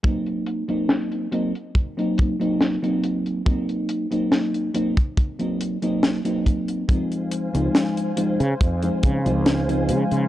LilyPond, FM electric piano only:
\new Staff \with { instrumentName = "FM electric piano" } { \time 4/4 \key ees \dorian \tempo 4 = 70 <ges bes c' ees'>8. <ges bes c' ees'>8. <ges bes c' ees'>16 r8 <ges bes c' ees'>8 <ges bes c' ees'>8 <ges bes c' ees'>8. | <ges bes c' ees'>8. <ges bes c' ees'>8. <ges bes c' ees'>16 r8 <ges bes c' ees'>8 <ges bes c' ees'>8 <ges bes c' ees'>8. | <f aes c' ees'>8. <f aes c' ees'>8. <f aes c' ees'>16 r8 <f aes c' ees'>8 <f aes c' ees'>8 <f aes c' ees'>8. | }